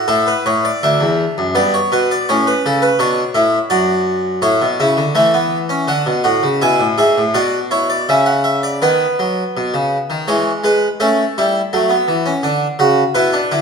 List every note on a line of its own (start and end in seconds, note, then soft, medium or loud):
0.08 0.31 A2 medium
0.08 0.80 E4 medium
0.08 0.26 A4 medium
0.27 0.45 B4 medium
0.46 0.69 A2 medium
0.46 0.64 C#5 medium
0.65 0.82 D5 medium
0.83 1.00 D2 medium
0.83 1.53 D4 medium
0.83 1.53 E5 medium
1.00 1.23 E2 medium
1.38 1.55 F#2 medium
1.55 1.78 G2 medium
1.55 2.25 B3 medium
1.55 1.73 D5 medium
1.74 1.91 C#5 medium
1.92 2.14 B2 medium
1.92 2.10 B4 medium
2.11 2.28 D5 medium
2.29 2.51 A2 medium
2.29 2.99 C#4 medium
2.29 2.46 C#5 medium
2.47 2.64 B4 medium
2.66 2.88 C#3 medium
2.66 2.82 A4 medium
2.82 2.99 B4 medium
2.99 3.22 B2 medium
2.99 3.22 D4 medium
2.99 3.69 C#5 medium
3.34 3.57 A2 medium
3.34 3.57 E4 medium
3.70 4.41 F#2 medium
3.70 4.40 F#4 medium
3.70 4.40 D5 medium
4.42 4.60 A2 medium
4.42 4.65 E4 medium
4.42 5.13 C#5 medium
4.62 4.79 B2 medium
4.80 4.97 C#3 medium
4.80 5.02 E4 medium
4.97 5.15 D3 medium
5.15 5.85 E3 medium
5.15 5.33 A3 medium
5.15 5.86 E5 medium
5.34 5.56 B3 medium
5.69 5.87 C#4 medium
5.88 6.05 D3 medium
5.88 6.11 D4 medium
5.88 6.59 F#5 medium
6.06 6.24 B2 medium
6.24 6.42 A2 medium
6.24 6.47 F#4 medium
6.43 6.61 C#3 medium
6.62 6.79 B2 medium
6.62 6.84 E4 medium
6.62 6.85 G#5 medium
6.80 6.97 A2 medium
6.98 7.16 G#2 medium
6.98 7.21 G#4 medium
6.98 7.21 E5 medium
7.18 7.35 A2 medium
7.34 8.06 B2 medium
7.34 7.57 F#4 medium
7.34 7.57 D5 medium
7.71 7.94 E4 medium
7.71 7.89 C#5 medium
7.90 8.07 D5 medium
8.09 8.80 C#3 medium
8.09 8.80 C#4 medium
8.09 8.26 E5 medium
8.26 8.44 F#5 medium
8.44 8.62 E5 medium
8.63 8.81 D5 medium
8.82 9.05 D#3 medium
8.82 10.24 B3 medium
8.82 10.24 B4 medium
9.19 9.42 F#3 medium
9.57 9.74 B2 medium
9.74 9.96 C#3 medium
10.10 10.27 D#3 medium
10.28 10.50 E3 medium
10.28 10.62 G#3 medium
10.28 10.50 C#5 medium
10.64 10.86 G#3 medium
10.64 10.87 B4 medium
11.00 11.22 A3 medium
11.00 11.23 C#4 medium
11.00 13.11 A4 medium
11.38 11.60 G3 medium
11.38 11.60 E4 medium
11.73 11.95 F#3 medium
11.73 11.90 A3 medium
11.89 12.12 B3 medium
12.08 12.30 E3 medium
12.26 12.43 C#4 medium
12.43 12.65 D3 medium
12.43 12.66 D4 medium
12.79 13.01 C#3 medium
12.79 13.02 F#4 medium
13.15 13.38 B2 medium
13.15 13.32 E4 medium
13.15 13.62 B4 medium
13.33 13.50 D4 medium
13.51 13.62 D3 medium
13.51 13.62 E4 medium